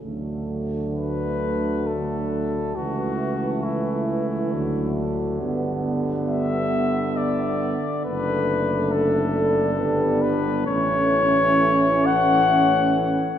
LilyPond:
<<
  \new Staff \with { instrumentName = "Flugelhorn" } { \time 3/4 \key d \major \tempo 4 = 68 r4 b'4 a'4 | fis'4 e'2 | r4 e''4 d''4 | b'4 a'4. b'8 |
cis''4. fis''4 r8 | }
  \new Staff \with { instrumentName = "French horn section" } { \time 3/4 \key d \major a2.~ | a2. | b2. | d'2. |
cis'2. | }
  \new Staff \with { instrumentName = "Euphonium" } { \clef bass \time 3/4 \key d \major fis2. | e2 fis4 | g2~ g8 r8 | a2 b4 |
a2. | }
  \new Staff \with { instrumentName = "Trombone" } { \clef bass \time 3/4 \key d \major d2. | e2 d4~ | d2.~ | d4. r8 g4 |
e2. | }
  \new Staff \with { instrumentName = "Tuba" } { \clef bass \time 3/4 \key d \major d,2. | cis,2 d,4 | g,,2~ g,,8 r8 | fis,,2 g,,4 |
a,,2. | }
>>